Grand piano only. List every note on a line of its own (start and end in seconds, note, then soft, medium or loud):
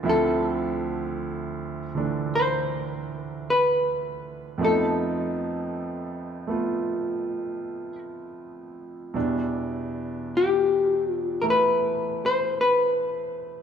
0.03 4.58 D2 soft
0.03 1.93 D3 soft
0.03 4.58 F3 soft
0.03 4.59 C4 soft
0.03 4.59 E4 medium
1.95 4.60 D3 soft
1.95 4.60 E3 soft
1.95 4.59 A3 soft
1.95 4.61 D4 soft
4.58 9.14 F2 soft
4.58 9.15 F3 soft
4.58 6.46 A3 soft
4.58 6.47 B3 soft
4.63 9.17 D#4 medium
6.47 9.14 A3 soft
6.47 9.15 B3 soft
6.47 9.16 F4 soft
9.14 13.62 E2 soft
9.14 13.62 B2 soft
9.14 11.41 E3 soft
9.14 13.62 G3 soft
9.14 13.62 D4 soft
11.42 13.62 E3 soft
11.42 13.62 A3 soft